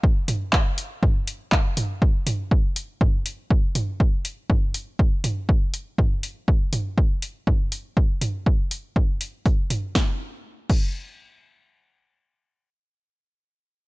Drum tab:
CC |--------|--------|--------|--------|
HH |-o-o-o-o|-o-o-o-o|-o-o-o-o|-o-o-o-o|
CP |--x---x-|--------|--------|--------|
SD |--------|--------|--------|--------|
T2 |-o--o--o|-o--o--o|--o--o--|o--o--o-|
BD |o-o-o-o-|o-o-o-o-|o-o-o-o-|o-o-o-o-|

CC |--------|---x----|--------|
HH |-o-o-ooo|--------|--------|
CP |--------|--------|--------|
SD |--------|o-------|--------|
T2 |-o--o--o|--------|--------|
BD |o-o-o-o-|o--o----|--------|